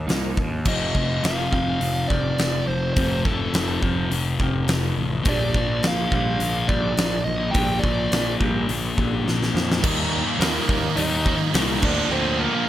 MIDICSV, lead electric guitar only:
0, 0, Header, 1, 2, 480
1, 0, Start_track
1, 0, Tempo, 572519
1, 551, Time_signature, 4, 2, 24, 8
1, 10637, End_track
2, 0, Start_track
2, 0, Title_t, "Lead electric guitar"
2, 0, Program_c, 0, 29
2, 573, Note_on_c, 0, 75, 93
2, 1054, Note_off_c, 0, 75, 0
2, 1057, Note_on_c, 0, 77, 90
2, 1275, Note_off_c, 0, 77, 0
2, 1285, Note_on_c, 0, 77, 93
2, 1729, Note_off_c, 0, 77, 0
2, 1743, Note_on_c, 0, 74, 86
2, 2237, Note_off_c, 0, 74, 0
2, 2241, Note_on_c, 0, 72, 81
2, 2448, Note_off_c, 0, 72, 0
2, 2459, Note_on_c, 0, 72, 98
2, 2692, Note_off_c, 0, 72, 0
2, 2735, Note_on_c, 0, 69, 71
2, 3176, Note_off_c, 0, 69, 0
2, 4433, Note_on_c, 0, 74, 83
2, 4912, Note_off_c, 0, 74, 0
2, 4922, Note_on_c, 0, 77, 85
2, 5127, Note_off_c, 0, 77, 0
2, 5155, Note_on_c, 0, 77, 91
2, 5586, Note_off_c, 0, 77, 0
2, 5600, Note_on_c, 0, 74, 83
2, 6067, Note_off_c, 0, 74, 0
2, 6070, Note_on_c, 0, 75, 86
2, 6297, Note_on_c, 0, 79, 111
2, 6324, Note_off_c, 0, 75, 0
2, 6532, Note_off_c, 0, 79, 0
2, 6535, Note_on_c, 0, 74, 77
2, 6994, Note_off_c, 0, 74, 0
2, 8721, Note_on_c, 0, 70, 83
2, 8725, Note_on_c, 0, 58, 58
2, 9165, Note_off_c, 0, 58, 0
2, 9188, Note_on_c, 0, 63, 78
2, 9192, Note_on_c, 0, 75, 88
2, 9210, Note_off_c, 0, 70, 0
2, 9635, Note_off_c, 0, 63, 0
2, 9637, Note_off_c, 0, 75, 0
2, 9910, Note_on_c, 0, 62, 78
2, 9930, Note_on_c, 0, 74, 101
2, 10131, Note_off_c, 0, 62, 0
2, 10142, Note_off_c, 0, 74, 0
2, 10160, Note_on_c, 0, 60, 78
2, 10168, Note_on_c, 0, 72, 86
2, 10377, Note_off_c, 0, 60, 0
2, 10390, Note_on_c, 0, 58, 58
2, 10392, Note_on_c, 0, 70, 71
2, 10402, Note_off_c, 0, 72, 0
2, 10637, Note_off_c, 0, 58, 0
2, 10637, Note_off_c, 0, 70, 0
2, 10637, End_track
0, 0, End_of_file